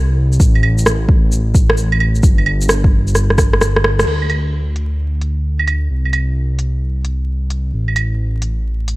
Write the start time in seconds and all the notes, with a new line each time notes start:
Already playing: C2
0.33 shaker
0.40 A1, kick, shaker
0.55 claves
0.63 claves
0.78 shaker
0.86 cross-stick, shaker
1.09 kick
1.32 shaker
1.55 kick, shaker
1.70 cross-stick
1.77 shaker
1.92 claves
2.00 claves
2.15 shaker
2.23 G1, kick, shaker
2.38 claves
2.46 claves
2.61 shaker
2.69 cross-stick, shaker
2.84 kick
3.07 shaker
3.15 cross-stick, shaker
3.30 cross-stick
3.38 kick, cross-stick, shaker
3.53 cross-stick
3.61 cross-stick, shaker
3.76 cross-stick
3.84 cross-stick
3.99 cross-stick, shaker
4.06 D2, crash
4.22 claves
4.30 open hi-hat, claves
4.76 open hi-hat
5.21 open hi-hat
5.59 claves
5.68 open hi-hat, claves
5.90 C2
6.05 claves
6.13 open hi-hat, claves
6.59 open hi-hat
7.05 open hi-hat
7.50 open hi-hat
7.73 A1
7.88 claves
7.96 open hi-hat, claves
8.42 open hi-hat
8.88 open hi-hat